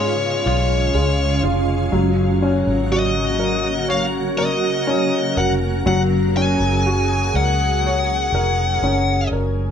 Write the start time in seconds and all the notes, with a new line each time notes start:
Already playing: G#2 C#3 G#3 C#4 F4
0.00 C#5
0.46 B1 F4 C#5
0.94 C#2 G#3
1.43 F1 F4
1.92 F#1 F#3 A#3 F#4
2.42 C#4
2.67 G#1
2.92 F#4 D#5
3.39 A#4
3.88 C#5 F5
4.38 A#4 D#5
4.87 C#4
5.37 F1 A#4 F#5
5.86 F#1 F#3 G#4 F#5
6.37 C#4 G#5
6.60 F#1
6.86 F#4
7.34 C#2 A#4 F#5
7.86 C#5
8.32 F1 A#4
8.82 F#1 C#4
9.31 F#1 A#4